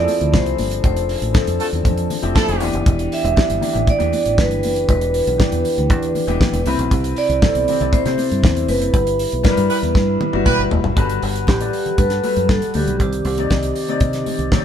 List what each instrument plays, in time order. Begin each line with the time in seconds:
Already playing: grand piano F3 C4 E4 G4 G#4 A4 B4, tonewheel organ F3 E4 A4, vibraphone D5
0.02 grand piano A4
0.08 open hi-hat, muted conga
0.21 fingered electric bass D2, closed hi-hat
0.33 fingered electric bass C2, vibraphone C5, kick, snare, high conga
0.46 closed hi-hat
0.58 fingered electric bass G1, tonewheel organ D4, open hi-hat, high conga
0.71 closed hi-hat
0.84 fingered electric bass F1, vibraphone C5, kick, closed hi-hat, muted conga
0.97 closed hi-hat
1.09 open hi-hat
1.22 fingered electric bass A1, closed hi-hat
1.32 grand piano F3 C4 E4 A4, kick, snare, high conga
1.47 fingered electric bass F2, closed hi-hat
1.60 horn section A3 F4 A4, open hi-hat
1.73 fingered electric bass E2, closed hi-hat
1.85 fingered electric bass F2, kick, closed hi-hat, muted conga, low conga
1.97 closed hi-hat
2.10 open hi-hat, muted conga, low conga
2.22 fingered electric bass F1, grand piano F3 C4 E4 G4, closed hi-hat
2.35 horn section D4 E4 A4, kick, snare, high conga
2.48 fingered electric bass F1, closed hi-hat
2.60 fingered electric bass E1, grand piano E3 B3 D4 G4, tonewheel organ E3 G4, open hi-hat, high conga
2.74 fingered electric bass F#1, closed hi-hat
2.86 fingered electric bass E1, kick, closed hi-hat
2.99 closed hi-hat
3.12 vibraphone E5, open hi-hat
3.24 fingered electric bass E1, closed hi-hat
3.36 grand piano E3 B3 D4 G4, kick, snare, high conga
3.50 fingered electric bass G1, closed hi-hat
3.61 grand piano E3 B3 D4 G4, open hi-hat, low conga
3.73 fingered electric bass A1, grand piano E3 B3 D4 G4, closed hi-hat, low conga
3.87 vibraphone D5, muted fingered electric bass stroke, kick, closed hi-hat, muted conga
3.98 fingered electric bass E2, grand piano E3 B3 D4 G4, closed hi-hat
4.13 open hi-hat, muted conga
4.26 fingered electric bass A1, closed hi-hat
4.38 fingered electric bass G1, vibraphone B4, kick, snare, high conga
4.51 closed hi-hat
4.63 fingered electric bass F#1, open hi-hat, high conga
4.76 closed hi-hat
4.89 fingered electric bass E1, vibraphone B4, kick, closed hi-hat, muted conga
5.01 closed hi-hat
5.14 open hi-hat
5.27 fingered electric bass B1, closed hi-hat
5.38 grand piano E3 B3 D4 G4, muted fingered electric bass stroke, kick, snare, high conga
5.52 fingered electric bass E2, closed hi-hat
5.65 open hi-hat
5.78 fingered electric bass D2, closed hi-hat
5.90 fingered electric bass E2, kick, closed hi-hat, muted conga, low conga
6.03 closed hi-hat
6.15 open hi-hat, muted conga, low conga
6.27 fingered electric bass E1, grand piano E3 B3 D4 G4, closed hi-hat
6.41 kick, snare, high conga
6.53 fingered electric bass E1, closed hi-hat
6.66 fingered electric bass C2, grand piano C3 C4 E4 B4, tonewheel organ C3 C4 E4, open hi-hat, high conga
6.79 fingered electric bass B1, closed hi-hat
6.91 fingered electric bass C2, kick, closed hi-hat, muted conga
7.04 closed hi-hat
7.16 vibraphone D5, open hi-hat
7.29 fingered electric bass C2, closed hi-hat
7.42 grand piano C3 C4 E4 A4, kick, snare, high conga
7.55 fingered electric bass B1, closed hi-hat
7.67 grand piano C3 C4 E4 G4, open hi-hat, low conga
7.80 fingered electric bass C2, grand piano C3 C4 E4 D5, closed hi-hat, low conga
7.93 vibraphone C5, muted fingered electric bass stroke, kick, closed hi-hat, muted conga
8.05 grand piano C3 C4 E4 C5, fingered electric bass C3, snare, closed hi-hat
8.18 open hi-hat, muted conga
8.31 fingered electric bass G2, closed hi-hat
8.43 fingered electric bass E2, kick, snare, high conga
8.57 closed hi-hat
8.68 fingered electric bass F#1, vibraphone B4, open hi-hat, high conga
8.82 closed hi-hat
8.93 fingered electric bass G1, tonewheel organ G3 B4, kick, closed hi-hat
9.07 closed hi-hat
9.19 open hi-hat
9.32 fingered electric bass B1, closed hi-hat
9.43 grand piano G3 D4 E4 A#4, muted fingered electric bass stroke, kick, snare, high conga
9.51 grand piano B4
9.57 fingered electric bass G2, closed hi-hat
9.70 horn section E4 G4 B4, open hi-hat
9.83 fingered electric bass E2, closed hi-hat
9.95 fingered electric bass G2, kick, snare, muted conga
10.21 high tom, muted conga, low conga
10.33 fingered electric bass G1, grand piano G3 D4 E4 F#4, high tom
10.46 horn section E4 G4 B4, kick, mid tom, high conga
10.59 fingered electric bass G1
10.71 fingered electric bass E1, floor tom, high conga
10.84 fingered electric bass F#1, floor tom
10.96 fingered electric bass G1, tonewheel organ G3 A4 B4 F#5, grand piano G3 F#4 A4 B4, kick, closed hi-hat
11.10 closed hi-hat
11.22 fingered electric bass G1, open hi-hat
11.36 closed hi-hat
11.47 fingered electric bass A1, vibraphone G4, kick, snare, high conga
11.60 grand piano G3 G4 A4 D5, closed hi-hat
11.73 open hi-hat
11.86 closed hi-hat, low conga
11.98 fingered electric bass G2, vibraphone B4, kick, closed hi-hat, muted conga
12.10 snare, closed hi-hat
12.23 grand piano G3 F#4 A4 B4, open hi-hat, muted conga
12.36 fingered electric bass F#2, closed hi-hat
12.49 fingered electric bass G2, vibraphone A4, kick, snare, high conga
12.62 closed hi-hat
12.74 fingered electric bass D2, grand piano G3 F#4 A4 D5, vibraphone G4, open hi-hat, high conga
12.88 fingered electric bass B1, closed hi-hat
13.00 fingered electric bass C2, tonewheel organ D#3 C4 D5, kick, closed hi-hat, muted conga
13.13 closed hi-hat
13.25 fingered electric bass C2, open hi-hat
13.38 grand piano C3 C4 D#4 D5, closed hi-hat
13.50 fingered electric bass C2, kick, snare, high conga
13.63 closed hi-hat
13.76 open hi-hat
13.88 grand piano C3 C4 D#4 D5, closed hi-hat
14.00 fingered electric bass C3, kick, closed hi-hat, muted conga
14.13 snare, closed hi-hat
14.26 open hi-hat, muted conga, low conga
14.39 fingered electric bass C2, closed hi-hat
14.52 grand piano C3 C4 D#4 C#5, kick, snare, high conga
14.59 grand piano D5